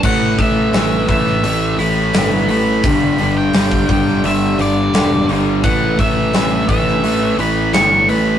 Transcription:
<<
  \new Staff \with { instrumentName = "Lead electric guitar" } { \time 4/4 \key g \lydian \tempo 4 = 86 fis''8 e''4 e''4 b''4 b''8~ | b''8. g''8. g''8 e''8 d''4 r8 | fis''8 e''4 e''4 b''8 cis'''8 b''8 | }
  \new Staff \with { instrumentName = "Distorted electric guitar" } { \clef bass \time 4/4 \key g \lydian <a, e a>8 <a, e a>8 <a, e a>8 <a, e a>8 <a, e a>8 <a, e a>8 <a, e a>8 <a, e a>8 | <g, d g>8 <g, d g>8 <g, d g>8 <g, d g>8 <g, d g>8 <g, d g>8 <g, d g>8 <g, d g>8 | <a, e a>8 <a, e a>8 <a, e a>8 <a, e a>8 <a, e a>8 <a, e a>8 <a, e a>8 <a, e a>8 | }
  \new Staff \with { instrumentName = "Distorted electric guitar" } { \clef bass \time 4/4 \key g \lydian <a, e a>8 <a, e a>8 <a, e a>8 <a, e a>8 <a, e a>8 <a, e a>8 <a, e a>8 <a, e a>8 | <g, d g>8 <g, d g>8 <g, d g>8 <g, d g>8 <g, d g>8 <g, d g>8 <g, d g>8 <g, d g>8 | <a, e a>8 <a, e a>8 <a, e a>8 <a, e a>8 <a, e a>8 <a, e a>8 <a, e a>8 <a, e a>8 | }
  \new Staff \with { instrumentName = "Overdriven electric guitar" } { \clef bass \time 4/4 \key g \lydian <a, e a>8 <a, e a>8 <a, e a>8 <a, e a>8 <a, e a>8 <a, e a>8 <a, e a>8 <a, e a>8 | <g, d g>8 <g, d g>8 <g, d g>8 <g, d g>8 <g, d g>8 <g, d g>8 <g, d g>8 <g, d g>8 | <a, e a>8 <a, e a>8 <a, e a>8 <a, e a>8 <a, e a>8 <a, e a>8 <a, e a>8 <a, e a>8 | }
  \new Staff \with { instrumentName = "Fingered electric bass" } { \clef bass \time 4/4 \key g \lydian a,,8 a,,8 a,,8 a,,8 a,,8 a,,8 g,,8 a,,8 | g,,8 g,,8 g,,8 g,,8 g,,8 g,,8 e,,8 g,,8 | a,,8 a,,8 a,,8 a,,8 a,,8 a,,8 g,,8 a,,8 | }
  \new DrumStaff \with { instrumentName = "Drums" } \drummode { \time 4/4 <cymc bd>8 <hho bd>8 <hho sn>8 <hho bd>16 sn16 hho8 hho8 <hho sn>8 hho8 | <hho bd>8 hho8 <hho sn>16 bd16 <hho bd>16 sn16 hho8 hho8 <hho sn>8 hho8 | <hho bd>8 <hho bd>8 <hho sn>8 <hho bd>16 sn16 hho8 hho8 <hho sn>8 hho8 | }
>>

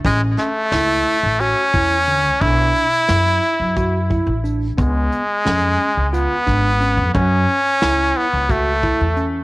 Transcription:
<<
  \new Staff \with { instrumentName = "Tine electric piano" } { \time 7/8 \key a \major \tempo 4 = 89 cis'4 e'4 fis'8 e'8 d8 | d'4 e'4 fis'8 e'8 d'8 | b4 cis'4 eis'8 d'8 cis'8 | cis'4 e'4 fis'8 e'8 cis'8 | }
  \new Staff \with { instrumentName = "Trumpet" } { \time 7/8 \key a \major gis8 a4. cis'4. | e'2. r8 | gis2 b4. | cis'4. b8 a4 r8 | }
  \new Staff \with { instrumentName = "Upright bass" } { \clef bass \time 7/8 \key a \major a,,8 r8 cis,8 r16 a,,8 r16 e,8. cis,16 | b,,8 r8 fis,8 r16 fis,4 a,,8. | cis,8 r8 eis,8 r16 cis,8 r16 gis,,8. eis,16 | fis,8 r8 cis,8 r16 cis,4 e,8. | }
  \new DrumStaff \with { instrumentName = "Drums" } \drummode { \time 7/8 <hh bd>8 <hh sn>8 <hh sn>8 hh8 hh8 <hh bd>8 hh8 | <hh bd>8 hh8 <hh sn>8 hh8 <hh bd>8 <hh bd>8 hh8 | <hh bd>8 hh8 <hh sn>8 hh8 hh8 <hh bd sn>8 hh8 | <hh bd>8 hh8 <hh sn>8 hh8 <hh bd>8 <hh bd>8 hh8 | }
>>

